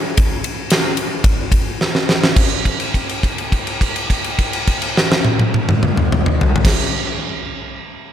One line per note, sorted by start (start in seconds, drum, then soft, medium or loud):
0.17 kick loud
0.17 ride medium
0.44 ride medium
0.70 snare loud
0.70 ride medium
0.97 ride medium
1.24 kick loud
1.24 ride medium
1.52 kick medium
1.52 ride medium
1.81 snare medium
1.95 snare medium
2.09 snare medium
2.24 snare loud
2.36 kick loud
2.36 crash medium
2.65 kick medium
2.65 crash soft
2.80 crash soft
2.94 kick medium
2.94 crash soft
3.09 crash soft
3.23 kick medium
3.23 crash soft
3.38 crash soft
3.52 kick medium
3.52 crash soft
3.67 crash soft
3.81 kick medium
3.81 crash medium
3.96 crash medium
4.10 kick medium
4.10 crash medium
4.24 crash soft
4.39 kick medium
4.39 crash soft
4.53 crash medium
4.67 kick medium
4.67 crash medium
4.82 crash medium
4.97 snare medium
5.12 snare medium
5.25 high tom medium
5.39 high tom loud
5.54 high tom medium
5.69 mid tom loud
5.83 mid tom medium
5.97 mid tom loud
6.12 mid tom loud
6.26 mid tom loud
6.41 floor tom loud
6.56 floor tom loud
6.65 kick loud
6.65 snare medium
6.65 crash medium